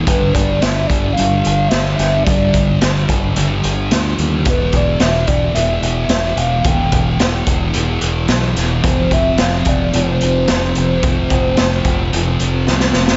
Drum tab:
HH |x-x-x-x-x-x-x-x-|x-x-x-x-x-x-x-x-|x-x-x-x-x-x-x-x-|x-x-x-x-x-x-x-x-|
SD |----o-------o-o-|----o-------o---|----o-------o---|----o-------o-o-|
BD |o-o---o---------|o-o---o---------|o-o---o---------|o-o---o---------|

HH |x-x-x-x-x-x-x-x-|x-x-x-x-x-x-----|
SD |----o-------o---|----o-------oooo|
BD |o-o---o---------|o-o---o---------|